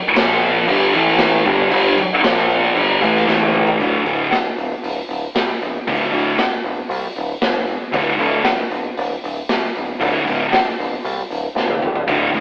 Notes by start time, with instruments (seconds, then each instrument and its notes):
0.16 picked electric bass A#1, distorted electric guitar A#2 F3 A#3, snare, crash
0.42 crash
0.68 picked electric bass G1, distorted electric guitar G2 D3 G3, crash
0.94 picked electric bass A1, distorted electric guitar A2 E3 A3, crash
1.07 snare
1.19 snare, crash
1.45 picked electric bass G1, distorted electric guitar G2 D3 G3, kick, crash
1.71 picked electric bass G1, distorted electric guitar G2 D3 G3, crash
1.97 muted distorted electric guitar stroke, muted picked electric bass stroke, kick, crash
2.23 picked electric bass A#1, distorted electric guitar A#2 F3 A#3, snare, crash
2.38 snare
2.50 crash
2.76 picked electric bass G1, distorted electric guitar G2 D3 G3, crash
3.01 picked electric bass A1, distorted electric guitar A2 E3 A3, crash
3.16 snare
3.27 picked electric bass A1, distorted electric guitar A2 E3 A3, snare
3.41 high tom
3.54 mid tom
3.67 floor tom
3.78 picked electric bass D1, distorted electric guitar D2 A2 D3, kick, open hi-hat
4.04 picked electric bass D1, distorted electric guitar D2 A2 D3, open hi-hat
4.32 picked electric bass D1, snare, open hi-hat
4.56 picked electric bass D1, open hi-hat
4.84 picked electric bass D1, open hi-hat
5.09 picked electric bass D1, open hi-hat
5.35 picked electric bass C2, snare, open hi-hat
5.61 picked electric bass D1, open hi-hat
5.87 picked electric bass D1, distorted electric guitar D2 A2 D3, kick, open hi-hat
6.12 picked electric bass D1, distorted electric guitar D2 A2 D3, open hi-hat
6.39 picked electric bass D1, snare, open hi-hat
6.64 picked electric bass D1, open hi-hat
6.89 picked electric bass C2, open hi-hat
7.16 picked electric bass D1, open hi-hat
7.42 picked electric bass F1, snare, open hi-hat
7.68 open hi-hat
7.92 picked electric bass D1, distorted electric guitar D2 A2 D3, kick, open hi-hat
8.18 picked electric bass D1, distorted electric guitar D2 A2 D3, open hi-hat
8.45 picked electric bass D1, snare, open hi-hat
8.70 picked electric bass D1, open hi-hat
8.97 picked electric bass D1, open hi-hat
9.24 picked electric bass D1, open hi-hat
9.49 picked electric bass C2, snare, open hi-hat
9.76 picked electric bass D1, open hi-hat
10.00 picked electric bass D1, distorted electric guitar D2 A2 D3, kick, open hi-hat
10.27 picked electric bass D1, distorted electric guitar D2 A2 D3, open hi-hat
10.53 picked electric bass D1, snare, open hi-hat
10.78 picked electric bass D1, open hi-hat
11.05 picked electric bass C2, open hi-hat
11.31 picked electric bass D1, open hi-hat
11.55 picked electric bass F1, snare
11.69 high tom
11.82 mid tom
11.95 floor tom
12.07 picked electric bass D1, distorted electric guitar D2 A2 D3, kick, open hi-hat
12.32 picked electric bass D1, distorted electric guitar D2 A2 D3, open hi-hat